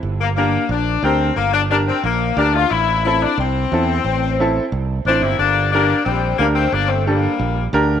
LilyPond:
<<
  \new Staff \with { instrumentName = "Upright piano" } { \time 4/4 \key g \dorian \tempo 4 = 179 r4 <d' g' bes'>8 r4. <d' g' bes'>8 r8 | r4 <d' g' bes'>8 r4. <d' g' bes'>8 r8 | r4 <c' e' a'>8 r4. <c' e' a'>8 r8 | r4 <c' e' a'>8 r4. <c' e' c''>8 r8 |
r4 <d' g' bes'>8 r4. <d' g' bes'>8 r8 | r4 <d' g' a'>8 r4. <d' g' bes'>8 r8 | }
  \new Staff \with { instrumentName = "Saxophone section" } { \time 4/4 \key g \dorian r8 bes8 bes4 d'4 c'4 | bes8 d'8 d'8 c'8 bes4 d'8 f'8 | e'4 e'8 d'8 c'2~ | c'2 r4 <a d'>8 <bes c' e'>8 |
<bes d'>4 <bes d'>4 <g c'>4 <g bes>8 <a c'>8 | <bes d'>8 <a c'>8 <g bes>2 r4 | }
  \new Staff \with { instrumentName = "Fingered electric bass" } { \clef bass \time 4/4 \key g \dorian g,,2 bes,,4 d,4 | g,,2 bes,,4 d,4 | a,,2 c,4 e,4 | a,,2 c,4 a,,8 g,,8 |
g,,2 bes,,4 d,4 | g,,2 bes,,4 d,4 | }
>>